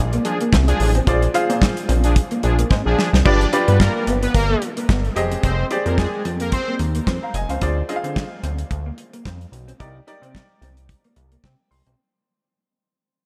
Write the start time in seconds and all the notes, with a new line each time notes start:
Already playing: A#1
0.13 A#3, closed hi-hat
0.25 F3 D4 G#4, muted clean electric guitar stroke, closed hi-hat
0.41 A#3, closed hi-hat
0.52 C2 C4, kick, snare, clap
0.67 F3 D4 G#4, closed hi-hat
0.80 A1, muted clean electric guitar stroke, open hi-hat
0.95 C4, closed hi-hat
1.07 A#1 F4 G#4 C5 D5, kick, closed hi-hat
1.22 muted clean electric guitar stroke, closed hi-hat
1.34 D4 F4 G#4 C5 F5, closed hi-hat
1.49 A#2 C4, closed hi-hat
1.62 kick, snare, clap
1.77 closed hi-hat
1.89 A#1 C4, closed hi-hat
2.04 F3 D4 G#4, closed hi-hat
2.16 kick, closed hi-hat
2.31 A#3, closed hi-hat
2.43 A#1 F3 D4 G#4, muted clean electric guitar stroke, closed hi-hat
2.59 A#3, closed hi-hat
2.71 G#2 C4, kick, snare
2.85 A#1 F3 D4 G#4
2.98 muted clean electric guitar stroke, snare
3.13 C2 C4, snare
3.25 G1 D4 F4 G4 B4 D5, kick, crash
3.41 muted clean electric guitar stroke, closed hi-hat
3.53 D4 F4 G4 B4 D5, closed hi-hat
3.67 G2 B3 B4, closed hi-hat
3.80 A#3 A#4, kick, snare, clap
3.95 A#3 A#4
4.07 G1 B3, closed hi-hat
4.22 B3 B4, closed hi-hat
4.34 G1 A#3 A#4, kick, closed hi-hat
4.50 A#3
4.62 muted clean electric guitar stroke, closed hi-hat
4.77 A#3, closed hi-hat
4.89 G1 B3, kick, snare, clap
5.05 closed hi-hat
5.16 F1 G4 G#4 C5 D#5, muted clean electric guitar stroke, closed hi-hat
5.31 C4, closed hi-hat
5.43 F1 C4 C5, kick, closed hi-hat
5.59 muted clean electric guitar stroke
5.71 D#4 G4 G#4 C5 D5, closed hi-hat
5.86 F2 A#3 C4 A#4, closed hi-hat
5.98 G#3 G#4, kick, snare, clap
6.13 G#3 G#4
6.25 F2 C4, closed hi-hat
6.40 A#3 A#4, closed hi-hat
6.52 C4 C5, kick, closed hi-hat
6.68 A#3
6.79 D#2, muted clean electric guitar stroke, closed hi-hat
6.95 A#3, closed hi-hat
7.07 F2 C4, kick, snare, clap
7.23 F5 A#5
7.34 F1 D#5 G#5, muted clean electric guitar stroke, closed hi-hat
7.49 C#2 C4 C5 F5, closed hi-hat
7.61 D2 F4 G#4 C5 D5, kick, closed hi-hat
7.78 muted clean electric guitar stroke
7.89 D4 F4 G#4 C5 D#5, closed hi-hat
7.96 F5
8.04 D3 C4, closed hi-hat
8.16 kick, snare, clap
8.43 D2 C4, closed hi-hat
8.58 closed hi-hat
8.71 D2, kick, closed hi-hat
8.86 A#3
8.98 muted clean electric guitar stroke, closed hi-hat
9.13 A#3, closed hi-hat
9.25 F2 C4, kick, snare, clap
9.41 closed hi-hat
9.52 B1, muted clean electric guitar stroke, closed hi-hat
9.68 C4, closed hi-hat
9.80 C2 D#4 G4 A#4 D5, kick, closed hi-hat
9.95 muted clean electric guitar stroke
10.07 D#4 G4 A#4 D5, closed hi-hat
10.22 C3 C4, closed hi-hat
10.35 kick, snare, clap
10.62 C2 C4, closed hi-hat
10.77 closed hi-hat
10.89 kick, closed hi-hat
11.04 A#3, closed hi-hat
11.16 C2, muted clean electric guitar stroke, closed hi-hat
11.32 A#3, closed hi-hat
11.44 C3 C4 G5, kick, snare, clap
11.71 C2 C6, muted clean electric guitar stroke, open hi-hat
11.86 B1 C4, closed hi-hat